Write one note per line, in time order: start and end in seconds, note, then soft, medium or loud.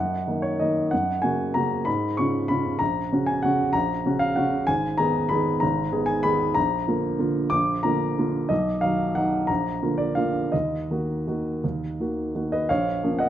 0.00 0.26 F#2 soft
0.00 0.43 F#5 medium
0.27 0.57 D#3 soft
0.27 0.57 A#3 soft
0.27 0.58 D#4 soft
0.42 0.59 C#5 medium
0.59 0.89 D#3 soft
0.59 0.89 A#3 soft
0.59 0.90 D#4 soft
0.59 0.92 D#5 medium
0.91 1.23 F#2 soft
0.91 1.23 F#5 medium
1.22 1.52 C#3 soft
1.22 1.52 A#3 soft
1.22 1.53 F#4 soft
1.22 1.55 G#5 medium
1.54 1.84 C#3 soft
1.54 1.84 A#3 soft
1.54 1.84 F#4 soft
1.54 1.86 A#5 medium
1.85 2.17 G#2 soft
1.85 2.17 B5 medium
2.17 2.47 C#3 soft
2.17 2.47 C#4 soft
2.17 2.48 F4 soft
2.17 2.49 C#6 medium
2.48 2.78 C#3 soft
2.48 2.78 C#4 soft
2.48 2.78 F4 soft
2.48 2.80 B5 medium
2.79 3.11 A#1 soft
2.79 3.27 A#5 medium
3.12 3.41 C#3 soft
3.12 3.41 C#4 soft
3.12 3.42 F#4 soft
3.26 3.43 G#5 medium
3.43 3.72 C#3 soft
3.43 3.72 C#4 soft
3.43 3.72 F#4 soft
3.43 3.74 F#5 medium
3.73 4.04 A#1 soft
3.73 4.20 A#5 medium
4.06 4.34 C#3 soft
4.06 4.34 C#4 soft
4.06 4.34 F#4 soft
4.19 4.36 F5 medium
4.36 4.65 C#3 soft
4.36 4.65 C#4 soft
4.36 4.66 F#4 soft
4.36 4.68 F#5 medium
4.67 4.98 G#1 soft
4.67 4.98 G#5 medium
4.98 5.28 D#3 soft
4.98 5.28 B3 soft
4.98 5.28 G#4 soft
4.98 5.30 A#5 medium
5.29 5.59 D#3 soft
5.29 5.59 B3 soft
5.29 5.59 G#4 soft
5.29 5.61 B5 medium
5.60 5.92 G#1 medium
5.60 6.07 A#5 medium
5.92 6.21 D#3 soft
5.92 6.21 B3 soft
5.92 6.21 G#4 soft
6.06 6.23 G#5 medium
6.23 6.53 D#3 soft
6.23 6.53 B3 soft
6.23 6.54 G#4 soft
6.23 6.56 B5 medium
6.55 6.86 A#1 soft
6.55 7.51 A#5 medium
6.88 7.17 D3 soft
6.88 7.17 A#3 soft
6.88 7.17 F4 soft
7.19 7.48 D3 soft
7.19 7.49 A#3 soft
7.19 7.49 F4 soft
7.50 7.83 A#1 soft
7.50 7.83 D6 medium
7.83 8.15 D3 soft
7.83 8.15 A#3 soft
7.83 8.15 F4 soft
7.83 8.00 A#5 medium
8.19 8.48 D3 soft
8.19 8.48 A#3 soft
8.19 8.48 F4 soft
8.49 8.82 B1 soft
8.49 8.82 D#5 medium
8.81 9.13 D#3 soft
8.81 9.14 F#3 soft
8.81 9.14 D#4 soft
8.81 9.16 F5 medium
9.15 9.46 D#3 soft
9.15 9.46 F#3 soft
9.15 9.47 D#4 soft
9.15 9.48 F#5 medium
9.47 9.81 A#1 soft
9.47 9.98 A#5 medium
9.83 10.14 D3 soft
9.83 10.14 A#3 soft
9.83 10.14 F4 soft
9.98 10.16 D5 medium
10.15 10.49 D3 soft
10.15 10.49 A#3 soft
10.15 10.50 F4 soft
10.15 10.52 F5 medium
10.52 10.89 D#2 soft
10.52 12.51 D#5 medium
10.91 11.23 D#3 soft
10.91 11.24 A#3 soft
10.91 11.24 F#4 soft
11.28 11.60 D#3 soft
11.28 11.60 A#3 soft
11.28 11.60 F#4 soft
11.64 11.98 D#2 soft
12.00 12.32 D#3 soft
12.00 12.32 A#3 soft
12.00 12.32 F#4 soft
12.35 12.67 D#3 soft
12.35 12.67 A#3 soft
12.35 12.67 F#4 soft
12.52 12.69 B4 soft
12.52 12.70 D#5 medium
12.69 13.02 A#1 soft
12.69 13.16 C#5 medium
12.69 13.19 F5 medium
13.03 13.29 F3 soft
13.03 13.29 A#3 soft
13.03 13.29 C#4 soft
13.19 13.29 D#5 medium
13.19 13.29 F#5 medium